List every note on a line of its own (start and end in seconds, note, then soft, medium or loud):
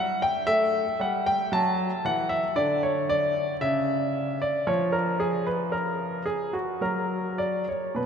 0.00 0.17 G3 medium
0.00 0.20 F#5 medium
0.22 0.47 G5 medium
0.47 0.84 A3 medium
0.47 0.98 E5 loud
1.00 1.37 G3 medium
1.00 1.26 F#5 medium
1.26 1.51 G5 medium
1.52 1.89 F#3 medium
1.52 2.04 A5 medium
2.05 2.42 E3 medium
2.05 2.31 F#5 medium
2.29 2.56 E5 medium
2.56 3.31 D3 medium
2.56 2.82 D5 medium
2.83 3.09 C#5 medium
3.09 3.54 D5 medium
3.61 4.37 C#3 medium
3.61 4.41 E5 medium
4.42 4.68 D5 medium
4.67 6.22 F3 medium
4.67 4.94 C#5 medium
4.92 5.19 A#4 medium
5.20 5.46 G#4 medium
5.47 5.73 B4 medium
5.72 6.26 A#4 medium
6.26 6.53 G#4 medium
6.53 6.81 F#4 medium
6.81 7.64 F#3 medium
6.81 7.38 A#4 medium
7.38 7.67 D5 medium
7.69 7.97 C#5 soft
7.95 8.06 B2 soft
7.95 8.06 B4 medium